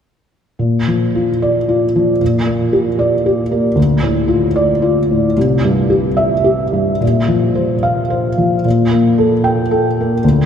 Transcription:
0.59 2.16 A#2 soft
0.88 1.30 F3 soft
1.15 1.57 F4 soft
1.42 1.84 D5 soft
1.69 2.11 F4 soft
1.96 2.21 F3 soft
2.21 3.73 A#2 soft
2.46 2.88 A#3 soft
2.73 3.14 G4 soft
2.99 3.40 D5 soft
3.26 3.67 G4 soft
3.51 3.77 A#3 soft
3.75 5.31 D2 soft
4.03 4.45 A2 soft
4.28 4.71 F4 soft
4.56 4.98 D5 soft
4.82 5.25 F4 soft
5.11 5.37 A2 soft
5.37 6.99 C2 soft
5.65 6.07 G2 soft
5.90 6.34 G4 soft
6.17 6.62 E5 soft
6.44 6.91 G4 soft
6.73 7.02 G2 soft
7.01 8.61 A#2 soft
7.28 7.73 F3 soft
7.55 8.00 C5 soft
7.83 8.27 F5 soft
8.10 8.54 C5 soft
8.38 8.65 F3 soft
8.65 10.19 A#2 soft
8.91 9.33 A#3 soft
9.18 9.60 A4 soft
9.44 9.86 G5 soft
9.71 10.13 A4 soft
10.00 10.25 A#3 soft
10.24 10.46 D2 soft

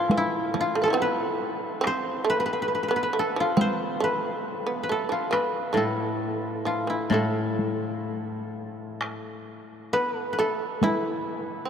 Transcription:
0.00 0.97 A2 soft
0.00 0.23 F4 medium
0.00 0.29 A4 medium
0.10 0.51 E3 medium
0.10 taiko high medium
0.17 0.67 E4 medium
0.54 0.74 F3 medium
0.54 taiko high soft
0.61 2.79 F4 medium
0.75 0.93 A3 medium
0.82 2.74 A4 medium
0.82 0.92 A4 soft
0.82 0.85 B4 soft
0.88 1.04 E4 soft
0.88 0.90 F4 soft
0.93 1.56 B3 medium
0.93 1.07 C4 soft
1.02 1.93 B4 medium
1.81 2.22 C4 medium
1.81 taiko rim medium
1.87 2.36 C5 medium
2.25 2.44 A3 medium
2.30 2.39 B4 medium
2.40 2.87 B3 medium
2.40 2.45 B4 medium
2.46 2.53 B4 medium
2.53 2.62 B4 soft
2.62 2.68 B4 medium
2.68 2.74 B4 soft
2.75 2.83 B4 medium
2.83 2.88 B4 medium
2.88 3.12 B3 medium
2.88 2.96 B4 medium
2.96 3.03 B4 medium
3.03 3.67 B4 medium
3.13 3.34 A3 medium
3.19 4.91 A4 medium
3.36 3.56 F3 medium
3.36 5.11 F4 medium
3.57 3.98 C4 medium
3.57 taiko high medium
3.61 4.10 C5 medium
4.00 4.19 A3 medium
4.00 4.83 B4 medium
4.19 4.63 B3 medium
4.67 4.87 B3 medium
4.83 5.32 B4 medium
4.89 5.09 A3 medium
4.89 5.77 A4 medium
5.09 5.30 F3 soft
5.09 6.66 F4 medium
5.31 5.57 B3 medium
5.31 7.10 B4 medium
5.31 taiko rim medium
5.57 5.72 A3 medium
5.73 7.09 A2 soft
5.73 6.60 A3 medium
5.73 taiko high soft
5.77 7.13 A4 medium
6.65 6.87 F3 medium
6.65 6.96 F4 medium
6.87 7.10 E3 soft
6.87 9.16 E4 medium
7.10 9.92 A2 soft
7.10 8.50 A3 medium
7.10 9.04 A4 medium
7.10 taiko high soft
7.59 taiko high soft
9.01 taiko rim medium
9.93 10.35 B3 medium
9.93 10.16 B4 medium
10.16 10.32 A4 medium
10.33 11.70 B4 medium
10.39 10.80 A3 medium
10.39 11.70 A4 medium
10.82 11.62 E3 medium
10.82 11.70 E4 medium
10.82 taiko high medium
11.65 11.70 C4 soft

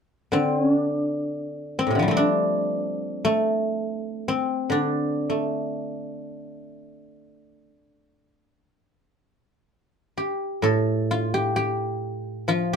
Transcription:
0.32 1.94 D3 soft
0.32 0.59 C4 medium
0.59 0.74 C#4 medium
0.74 2.16 D4 medium
1.79 2.11 C4 medium
1.87 2.08 A2 soft
1.87 2.23 C3 soft
1.95 2.17 D3 soft
1.99 5.82 F3 soft
1.99 3.31 G3 soft
2.08 3.24 A3 soft
2.08 4.28 C4 soft
2.17 4.71 D4 medium
3.25 5.29 A3 medium
4.28 7.29 C4 medium
4.70 8.25 D3 soft
4.70 7.93 D4 medium
5.30 7.69 A3 soft
10.18 11.34 G4 soft
10.62 12.76 A2 soft
10.62 12.76 A4 medium
11.11 12.48 F4 medium
11.34 11.56 G4 medium
11.56 12.73 G4 medium
12.48 12.76 F3 soft
12.48 12.76 F4 medium

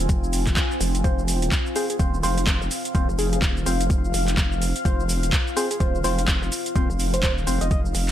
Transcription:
0.00 8.12 C4 medium
0.00 8.12 F4 medium
0.00 1.03 G#5 medium
0.09 0.55 F1 loud
0.09 kick loud
0.09 closed hi-hat medium
0.09 shaker soft
0.24 shaker soft
0.33 open hi-hat loud
0.33 shaker medium
0.47 kick medium
0.47 clap soft
0.47 closed hi-hat medium
0.47 shaker soft
0.57 kick loud
0.57 clap loud
0.57 closed hi-hat medium
0.57 shaker soft
0.71 shaker soft
0.81 1.03 F1 loud
0.81 open hi-hat medium
0.81 shaker medium
0.95 closed hi-hat medium
0.95 shaker soft
1.04 1.50 F1 loud
1.04 1.23 C4 medium
1.04 1.23 F4 medium
1.04 1.23 C5 medium
1.04 8.12 F5 medium
1.04 kick loud
1.04 closed hi-hat medium
1.04 shaker soft
1.19 shaker soft
1.28 open hi-hat loud
1.28 shaker medium
1.42 closed hi-hat medium
1.42 shaker soft
1.52 kick loud
1.52 clap loud
1.52 closed hi-hat medium
1.52 shaker soft
1.67 shaker soft
1.76 1.89 C4 medium
1.76 1.89 F4 medium
1.76 1.85 G#4 medium
1.76 1.89 C5 medium
1.76 open hi-hat loud
1.76 shaker medium
1.90 1.96 G#4 medium
1.90 closed hi-hat medium
1.90 shaker soft
1.99 2.22 D#1 loud
1.99 2.18 C4 medium
1.99 2.18 F4 medium
1.99 2.18 C5 loud
1.99 kick loud
1.99 closed hi-hat medium
1.99 shaker soft
2.14 shaker soft
2.23 2.46 F1 loud
2.23 2.42 C4 loud
2.23 2.42 F4 medium
2.23 2.42 C5 loud
2.23 open hi-hat loud
2.23 shaker medium
2.38 closed hi-hat medium
2.38 shaker soft
2.47 2.59 F1 loud
2.47 kick loud
2.47 clap loud
2.47 closed hi-hat medium
2.47 shaker soft
2.61 2.70 F1 loud
2.61 shaker soft
2.71 open hi-hat medium
2.71 shaker medium
2.85 closed hi-hat medium
2.85 shaker soft
2.95 3.07 D#1 loud
2.95 3.08 C4 loud
2.95 3.08 F4 medium
2.95 3.08 C5 loud
2.95 kick loud
2.95 closed hi-hat medium
2.95 shaker soft
3.09 3.41 F1 loud
3.09 shaker soft
3.19 3.28 G#4 medium
3.19 open hi-hat loud
3.19 shaker medium
3.33 3.39 G#4 medium
3.33 closed hi-hat medium
3.33 shaker soft
3.42 3.65 D#1 loud
3.42 kick loud
3.42 clap loud
3.42 closed hi-hat medium
3.42 shaker soft
3.57 shaker soft
3.66 4.12 F1 loud
3.66 3.85 C4 medium
3.66 3.85 F4 medium
3.66 3.85 C5 medium
3.66 open hi-hat loud
3.66 shaker medium
3.81 closed hi-hat medium
3.81 shaker soft
3.90 kick loud
3.90 closed hi-hat medium
3.90 shaker soft
4.05 shaker soft
4.14 4.36 F1 loud
4.14 open hi-hat loud
4.14 shaker medium
4.28 clap soft
4.28 closed hi-hat medium
4.28 shaker soft
4.38 4.73 F1 loud
4.38 kick loud
4.38 clap loud
4.38 closed hi-hat medium
4.38 shaker soft
4.52 shaker soft
4.62 open hi-hat loud
4.62 shaker medium
4.76 closed hi-hat medium
4.76 shaker soft
4.85 5.31 F1 loud
4.85 5.04 C4 medium
4.85 5.04 F4 medium
4.85 5.04 C5 medium
4.85 kick loud
4.85 closed hi-hat medium
4.85 shaker soft
5.00 shaker soft
5.09 open hi-hat loud
5.09 shaker medium
5.23 closed hi-hat medium
5.23 shaker soft
5.33 kick loud
5.33 clap loud
5.33 closed hi-hat medium
5.33 shaker soft
5.47 shaker soft
5.57 5.70 C4 medium
5.57 5.70 F4 medium
5.57 5.66 G#4 medium
5.57 5.70 C5 medium
5.57 open hi-hat loud
5.57 shaker medium
5.71 5.77 G#4 medium
5.71 closed hi-hat medium
5.71 shaker soft
5.80 6.03 D#1 loud
5.80 5.99 C4 medium
5.80 5.99 F4 medium
5.80 5.99 C5 medium
5.80 kick loud
5.80 closed hi-hat medium
5.80 shaker soft
5.95 shaker soft
6.04 6.27 F1 loud
6.04 6.23 C4 loud
6.04 6.23 F4 medium
6.04 6.23 C5 loud
6.04 open hi-hat loud
6.04 shaker medium
6.19 closed hi-hat medium
6.19 shaker soft
6.28 6.40 F1 loud
6.28 kick loud
6.28 clap loud
6.28 closed hi-hat medium
6.28 shaker soft
6.42 6.50 F1 loud
6.42 shaker soft
6.52 open hi-hat loud
6.52 shaker medium
6.66 closed hi-hat medium
6.66 shaker soft
6.76 6.88 D#1 loud
6.76 6.89 C4 loud
6.76 6.89 F4 medium
6.76 6.89 C5 loud
6.76 kick loud
6.76 closed hi-hat medium
6.76 shaker soft
6.90 7.22 F1 loud
6.90 shaker soft
7.00 open hi-hat loud
7.00 shaker medium
7.14 7.20 C5 medium
7.14 closed hi-hat medium
7.14 shaker soft
7.23 7.46 D#1 loud
7.23 7.32 C5 medium
7.23 kick loud
7.23 clap loud
7.23 closed hi-hat medium
7.23 shaker soft
7.38 shaker soft
7.47 7.59 F1 loud
7.47 7.66 C4 medium
7.47 7.66 F4 medium
7.47 7.66 C5 medium
7.47 open hi-hat loud
7.47 shaker medium
7.61 7.93 F1 loud
7.61 7.67 D#5 medium
7.61 closed hi-hat medium
7.61 shaker soft
7.71 7.80 D#5 medium
7.71 kick loud
7.71 closed hi-hat soft
7.71 shaker soft
7.85 shaker soft
7.95 8.12 F1 loud
7.95 open hi-hat loud
7.95 shaker medium

